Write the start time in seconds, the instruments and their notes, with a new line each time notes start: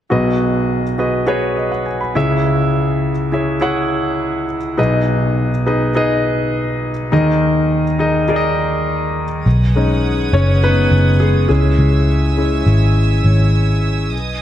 0.10 grand piano B1 B2 F#4 G#4 B4 D#5
0.98 grand piano F#4 G#4 B4 D#5
1.27 grand piano F#4 G#4 B4 C#5
1.57 grand piano D#5
1.72 grand piano F#5
1.86 grand piano G#5
2.01 grand piano B5
2.15 grand piano C#2 C#3 E4 G#4 C#5 E5
3.32 grand piano E4 G#4 C#5 E5
3.61 grand piano E4 G#4 C#5 F#5
4.78 grand piano B1 B2 D#4 G#4 B4 D#5
5.66 grand piano D#4 G#4 B4 D#5
5.95 grand piano D#4 G#4 B4 D#5
7.12 grand piano D#2 D#3 D#4 G#4 A#4 D#5
7.99 grand piano D#4 G#4 A#4 D#5
8.28 grand piano D#4 G#4 A#4 D5
8.36 grand piano D#5
9.45 picked electric bass B1, string section B4 F#5 G#5 D#6
9.76 grand piano G#3 C#4 D#4
10.33 picked electric bass F#1, grand piano C#4 C#5
10.63 grand piano G#3 B3 C#4 D#4 B4
10.91 picked electric bass F#1
11.20 grand piano G#3 G#4
11.49 picked electric bass C#2, grand piano G#3 C#4 E4 G#4, string section C#5 E5 G#5 E6
11.79 picked electric bass C#2
12.37 grand piano G#3 C#4 E4
12.66 picked electric bass G#1
13.24 picked electric bass G#1
14.12 picked electric bass B1, string section B4 D#5 G#5 D#6